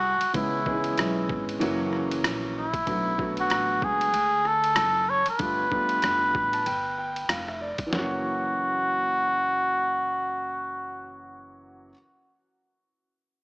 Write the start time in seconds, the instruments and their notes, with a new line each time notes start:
Already playing: upright bass C2, muted trumpet F#4
0.21 muted upright bass stroke, ride
0.33 upright bass C#2, grand piano E3 G#3 B3 C#4 G#4, muted trumpet E4, kick, ride
0.65 grand piano D#3 G#3 B3 C#4 G#4, kick
0.72 grand piano E3
0.84 ride
0.98 upright bass B1, cross-stick, hi-hat pedal, ride
1.29 upright bass G#1, kick
1.49 ride
1.59 upright bass F#1, grand piano E3 F#3 A#3 C#4 F#4, ride
1.93 cross-stick
2.11 ride
2.24 upright bass A#1, cross-stick, hi-hat pedal, ride
2.58 muted trumpet E4
2.74 kick, ride
2.86 upright bass B1, grand piano D3 F#3 A3 B3 F#4, kick, ride
3.17 grand piano D3 F#3 A3 B3 F#4, kick
3.37 muted trumpet F#4, ride
3.50 upright bass A1, cross-stick, hi-hat pedal, ride
3.82 upright bass C#2, muted trumpet G#4, kick
4.01 ride
4.14 upright bass D2, ride
4.45 muted trumpet A4, cross-stick
4.64 ride
4.76 upright bass F#1, cross-stick, hi-hat pedal, ride
5.10 muted trumpet C#5
5.26 muted trumpet B4, muted upright bass stroke, ride
5.38 upright bass G1, grand piano D3 G3 A3 B3 F4, kick, ride
5.71 grand piano D3 G3 A3 B3 F4, kick
5.89 ride
6.02 upright bass F1, cross-stick, hi-hat pedal, ride
6.35 upright bass A1, grand piano B5, kick
6.53 grand piano A5, ride
6.66 upright bass G1, grand piano G5, ride
6.98 grand piano G5
7.16 ride
7.29 upright bass F1, grand piano F5, cross-stick, hi-hat pedal, ride
7.48 grand piano E5, cross-stick
7.61 grand piano D5
7.78 muted upright bass stroke, kick, ride
7.87 grand piano E3 F#3
7.92 upright bass F#1, grand piano A#3 C#4, muted trumpet F#4, snare
7.98 grand piano F#4